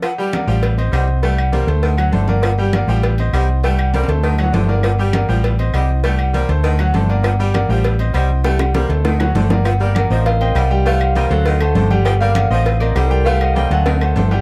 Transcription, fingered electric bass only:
X:1
M:4/4
L:1/8
Q:1/4=200
K:Gm
V:1 name="Fingered electric bass" clef=bass
z3 A,,,3 C,,2- | C,,3 D,,3 G,,,2- | G,,,3 A,,,3 C,,2- | C,,3 D,,3 G,,,2- |
G,,,3 A,,,3 C,,2- | C,,3 D,,3 G,,,2- | G,,,3 A,,,3 C,,2- | C,,3 D,,3 G,,,2- |
G,,,3 A,,,3 C,,2- | C,,3 D,,3 G,,,2- | G,,,3 A,,,3 C,,2- | C,,3 D,,3 G,,,2 |]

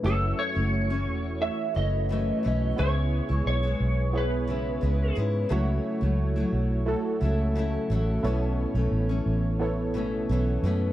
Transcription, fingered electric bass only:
X:1
M:4/4
L:1/16
Q:1/4=88
K:F#m
V:1 name="Fingered electric bass" clef=bass
F,,,2 z F,,,3 E,,,3 z F,,,4 B,,,2 | C,,3 C,, B,,,2 B,,,6 C,,2 G,,2 | C,,2 z C,,3 B,,,3 z C,,4 A,,,2 | B,,,3 B,,, A,,,2 A,,,6 B,,,2 F,,2 |]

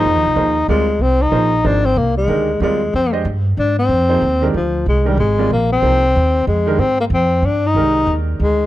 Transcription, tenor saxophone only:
X:1
M:3/4
L:1/8
Q:"Swing" 1/4=187
K:Fdor
V:1 name="Tenor saxophone"
E4 A,2 | C E3 D C | B, A,3 A,2 | C z3 D C- |
C4 F,2 | A, G, A,2 B, C- | C4 A,2 | C B, C2 D E- |
E2 z2 A,2 |]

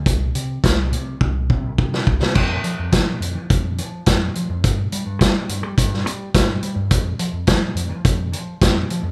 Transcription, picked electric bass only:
X:1
M:4/4
L:1/16
Q:1/4=105
K:Cmix
V:1 name="Picked electric bass" clef=bass
C,,2 C,2 C,,2 C,2 C,,2 C, C,, C,2 C,, C, | F,,2 F, F,, F,2 F,, F, F,,2 F,2 F,,2 F, F,, | G,,2 G, G,, G,2 G,, G, G,,2 G,2 G,,2 G, G,, | F,,2 F, F,, F,2 F,, F, F,,2 F,2 F,,2 F, F,, |]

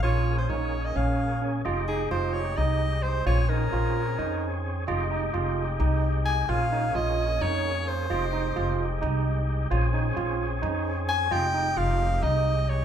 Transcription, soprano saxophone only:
X:1
M:7/8
L:1/16
Q:1/4=130
K:Fm
V:1 name="Soprano saxophone"
d3 c d3 e f4 z2 | z2 A2 c2 d2 e4 c2 | d2 B8- B2 z2 | z12 a2 |
f4 e4 d4 c2- | c8 z6 | z12 a2 | g4 f4 e4 d2 |]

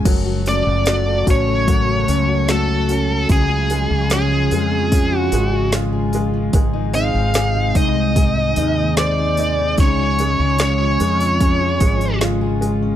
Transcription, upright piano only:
X:1
M:4/4
L:1/8
Q:1/4=74
K:F#m
V:1 name="Upright piano"
F, C, F C F C F C | C, G, C G, C G, ^E G, | G, ^D G D G D ^B D | C, G, C G, C G, ^E G, |]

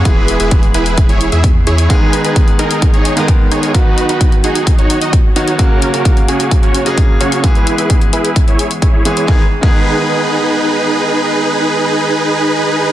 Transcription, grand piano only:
X:1
M:4/4
L:1/16
Q:1/4=130
K:G#m
V:1 name="Grand piano"
[E,G,B,G]12- [E,G,B,G]2 z2 | [D,G,B,G]8- [D,G,B,G]3 [D,G,B,A]4- [D,G,B,A] | [D,F,B,F]12- [D,F,B,F]2 [D,F,B,F]2 | [C,F,A,F]8- [C,F,A,F]3 [C,F,A,G]4- [C,F,A,G] |
[E,G,B,G]12- [E,G,B,G]2 [E,G,B,G]2 | [D,G,B,G] z2 [D,G,B,G]12- [D,G,B,G]- | [D,G,B,G]16 |]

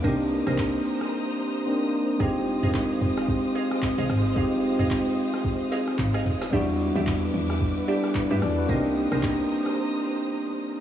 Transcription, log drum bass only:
X:1
M:4/4
L:1/16
Q:"Swing 16ths" 1/4=111
K:Fm
V:1 name="Log drum bass" clef=bass
C,,3 C,,3 z8 z2 | F,,,3 F,,,3 F,,,4 z3 C,, A,,,2 | F,,,3 F,,,3 z6 A,,,2 F,,,2 | =E,,3 E,,3 E,,4 z3 G,, E,,2 |
C,,3 C,,3 z8 z2 |]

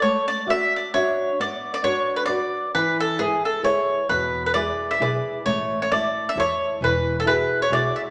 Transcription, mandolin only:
X:1
M:3/4
L:1/16
Q:"Swing" 1/4=133
K:Emix
V:1 name="Mandolin"
c2 d2 e2 d2 c4 | d3 d c3 B d4 | B2 A2 G2 A2 c4 | B3 B d3 e d4 |
c3 c d3 e c4 | B3 A B3 c d2 e z |]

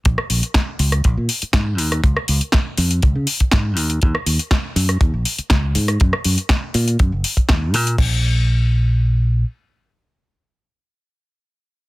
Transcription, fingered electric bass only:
X:1
M:4/4
L:1/16
Q:1/4=121
K:Bbm
V:1 name="Fingered electric bass" clef=bass
B,,, z B,,, z3 D,,2 B,,, B,, z2 A,,2 E,,2 | D,, z D,, z3 F,,2 D,, D, z2 A,,2 E,,2 | E,, z E,, z3 G,,2 E,, B,,, z2 D,,2 A,,2 | G,, z G,, z3 B,,2 G,, G,,, z2 E,,2 B,,2 |
B,,,12 z4 | z16 |]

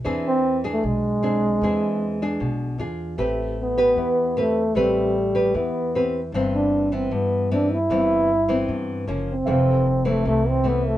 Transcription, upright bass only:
X:1
M:4/4
L:1/8
Q:1/4=153
K:Am
V:1 name="Upright bass" clef=bass
E,,4 B,,,4 | E,,4 B,,,2 E,,2 | A,,,4 E,,4 | A,,,4 E,,4 |
G,,,4 G,,4 | G,,,4 G,,2 ^F,,,2 | F,,,4 C,,4 |]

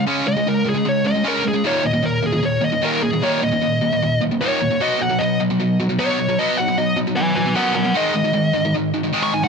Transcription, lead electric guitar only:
X:1
M:4/4
L:1/16
Q:1/4=152
K:Ebm
V:1 name="Lead electric guitar"
z2 e2 B2 A2 d2 e2 B2 A2 | d2 e2 B2 A2 d2 e2 B2 A2 | d2 e8 z2 d4 | e2 ^f2 e2 z6 d4 |
e2 ^f2 e2 z2 [=Ba]2 [Ba]2 [_Bf]2 [Bf]2 | e8 z4 z d' a g |]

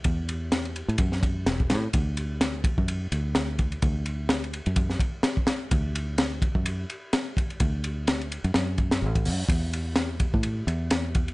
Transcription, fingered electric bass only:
X:1
M:4/4
L:1/16
Q:"Swing 16ths" 1/4=127
K:Dlyd
V:1 name="Fingered electric bass" clef=bass
E,,6 z A,, F,,4 E,,,2 A,, z | D,,6 z F,,2 z D,,4- D,, z | D,,6 z F,,2 z6 z | D,,6 z F,,2 z6 z |
D,,6 z F,, F,,4 A,,,2 F,, z | E,,6 z A,,2 z E,,4- E,, z |]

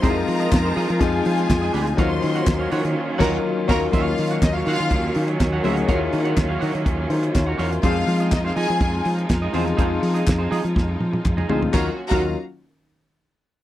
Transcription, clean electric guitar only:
X:1
M:4/4
L:1/16
Q:1/4=123
K:Ebdor
V:1 name="Clean electric guitar"
[EAc] z2 [EAe] z [EAc] [EAe] z6 [EAe] [EAc]2 | [Gdf] z2 [Gdg] z [Gdf] [Gdg] z3 [Gdg]2 z2 [Gdf]2 | [Gdf]2 z [Gdg] z [Gdf] [Gdg] z6 [Gdg] [Gdf]2 | [Gdf] z2 [Gdg] z [Gdf] [Gdg] z6 [Gdg] [Gdf] z |
[EAc] z2 [EAe] z [EAc] [EAe] z6 [EAe] [EAc] z | [EAc] z2 [EAe] z [EAc] [EAe] z6 [EAe] [EAc] z | [Gdf] z2 [Gdf] z12 |]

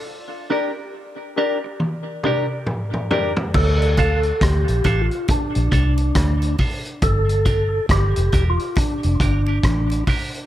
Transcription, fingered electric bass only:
X:1
M:4/4
L:1/16
Q:"Swing 16ths" 1/4=69
K:Dm
V:1 name="Fingered electric bass" clef=bass
z16 | D,,4 D,, B,,, A,,, z2 B,,, C,,2 D,,2 z2 | G,,,4 G,,, F,,, E,,, z2 F,,, G,,,2 A,,,2 z2 |]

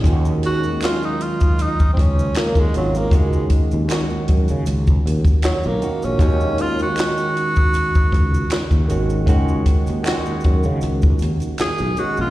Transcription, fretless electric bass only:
X:1
M:4/4
L:1/16
Q:"Swing 16ths" 1/4=78
K:Ebm
V:1 name="Fretless electric bass" clef=bass
E,,4 z6 D,,2 z E,, A,,,2 | D,,2 z E,,2 z G,, D, D,,2 E,, z2 C,, z B,,, | E,,4 z6 D,,2 z E,, A,,,2 | D,,2 z E,,2 z G,, D, D,,2 E,, z2 C,, z B,,, |]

